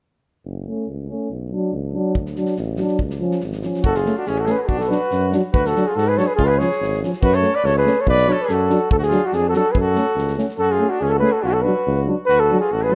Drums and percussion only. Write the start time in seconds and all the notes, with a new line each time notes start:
2.15 kick
2.26 snare
2.36 snare
2.46 snare
2.57 snare
2.76 snare
2.88 snare
2.99 kick
3.10 snare
3.31 snare
3.40 snare
3.52 snare
3.62 snare
3.74 snare
3.84 kick
3.95 snare
4.06 snare
4.27 snare
4.46 snare
4.69 kick
4.80 snare
4.92 snare
5.11 snare
5.32 snare
5.54 kick
5.65 snare
5.76 snare
5.98 snare
6.18 snare
6.39 kick
6.60 snare
6.72 snare
6.82 snare
6.93 snare
7.04 snare
7.13 snare
7.23 kick
7.33 snare
7.44 snare
7.65 snare
7.87 snare
8.07 kick
8.18 snare
8.28 snare
8.48 snare
8.70 snare
8.91 kick
9.02 snare
9.11 snare
9.33 snare
9.54 snare
9.75 kick
9.95 snare
10.18 snare
10.28 snare
10.38 snare
10.49 snare